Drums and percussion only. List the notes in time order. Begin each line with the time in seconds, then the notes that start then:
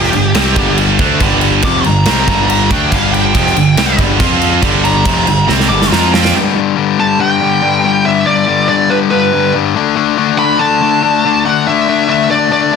0.04 snare
0.13 crash
0.35 snare, crash
0.56 kick, crash
0.78 crash
0.99 kick, crash
1.20 kick, crash
1.41 crash
1.62 kick, crash
1.84 crash
2.05 snare, crash
2.28 kick, crash
2.50 crash
2.71 kick, crash
2.92 kick, crash
3.14 crash
3.35 kick, crash
3.47 snare
3.56 crash
3.77 snare, crash
3.99 kick, crash
4.20 kick, crash
4.41 crash
4.63 kick, crash
4.85 crash
5.06 kick, crash
5.27 crash
5.49 snare
5.60 snare
5.82 snare
5.92 snare
6.14 snare
6.25 snare